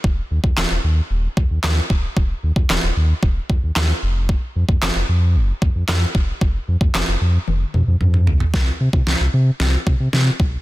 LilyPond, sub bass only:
\new Staff \with { instrumentName = "Sub bass" } { \clef bass \time 4/4 \key f \dorian \tempo 4 = 113 ees,,8 ees,16 ees,16 ees,,16 ees,,16 ees,8 ees,,8 ees,16 ees,16 ees,8 d,,8 | ees,,8 ees,16 ees,16 ees,,16 ees,,16 ees,8 ees,,8 ees,16 ees,16 ees,8 f,,8~ | f,,8 f,16 f,16 f,,16 f,,16 f,8 f,,8 f,16 f,16 f,8 e,,8 | f,,8 f,16 f,16 f,,16 f,,16 f,8 f,,8 f,16 f,16 f,8 b,,8 |
c,8 c16 c16 c,16 c,16 c8 c,8 c16 c16 c8 b,,8 | }